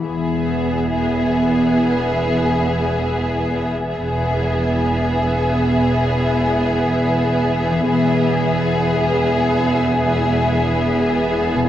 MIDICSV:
0, 0, Header, 1, 7, 480
1, 0, Start_track
1, 0, Key_signature, 4, "major"
1, 0, Tempo, 500000
1, 11221, End_track
2, 0, Start_track
2, 0, Title_t, "Violin section"
2, 0, Program_c, 0, 48
2, 55, Note_on_c, 0, 76, 25
2, 3871, Note_off_c, 0, 76, 0
2, 3936, Note_on_c, 0, 76, 31
2, 7554, Note_off_c, 0, 76, 0
2, 7593, Note_on_c, 0, 76, 37
2, 11221, Note_off_c, 0, 76, 0
2, 11221, End_track
3, 0, Start_track
3, 0, Title_t, "Violin section"
3, 0, Program_c, 1, 48
3, 48, Note_on_c, 1, 68, 25
3, 3868, Note_off_c, 1, 68, 0
3, 3918, Note_on_c, 1, 68, 30
3, 7545, Note_off_c, 1, 68, 0
3, 7563, Note_on_c, 1, 68, 37
3, 11221, Note_off_c, 1, 68, 0
3, 11221, End_track
4, 0, Start_track
4, 0, Title_t, "Harp"
4, 0, Program_c, 2, 46
4, 0, Note_on_c, 2, 52, 23
4, 0, Note_on_c, 2, 59, 19
4, 0, Note_on_c, 2, 64, 20
4, 0, Note_on_c, 2, 68, 19
4, 3686, Note_off_c, 2, 52, 0
4, 3704, Note_off_c, 2, 59, 0
4, 3722, Note_off_c, 2, 64, 0
4, 3744, Note_off_c, 2, 68, 0
4, 7398, Note_on_c, 2, 52, 34
4, 7445, Note_on_c, 2, 59, 27
4, 7489, Note_on_c, 2, 64, 26
4, 7526, Note_on_c, 2, 68, 28
4, 11089, Note_on_c, 2, 47, 31
4, 11134, Note_on_c, 2, 57, 26
4, 11142, Note_off_c, 2, 52, 0
4, 11172, Note_on_c, 2, 63, 25
4, 11189, Note_off_c, 2, 59, 0
4, 11208, Note_off_c, 2, 68, 0
4, 11221, Note_off_c, 2, 47, 0
4, 11221, Note_off_c, 2, 57, 0
4, 11221, Note_off_c, 2, 63, 0
4, 11221, Note_off_c, 2, 64, 0
4, 11221, End_track
5, 0, Start_track
5, 0, Title_t, "Viola section"
5, 0, Program_c, 3, 48
5, 44, Note_on_c, 3, 59, 24
5, 3866, Note_off_c, 3, 59, 0
5, 3907, Note_on_c, 3, 59, 30
5, 7539, Note_off_c, 3, 59, 0
5, 7583, Note_on_c, 3, 59, 34
5, 11221, Note_off_c, 3, 59, 0
5, 11221, End_track
6, 0, Start_track
6, 0, Title_t, "Cello section"
6, 0, Program_c, 4, 48
6, 44, Note_on_c, 4, 40, 25
6, 3866, Note_off_c, 4, 40, 0
6, 3901, Note_on_c, 4, 40, 28
6, 7536, Note_off_c, 4, 40, 0
6, 7577, Note_on_c, 4, 40, 35
6, 11221, Note_off_c, 4, 40, 0
6, 11221, End_track
7, 0, Start_track
7, 0, Title_t, "Double bass section"
7, 0, Program_c, 5, 48
7, 54, Note_on_c, 5, 28, 25
7, 3871, Note_off_c, 5, 28, 0
7, 3905, Note_on_c, 5, 28, 30
7, 7538, Note_off_c, 5, 28, 0
7, 7580, Note_on_c, 5, 28, 36
7, 11221, Note_off_c, 5, 28, 0
7, 11221, End_track
0, 0, End_of_file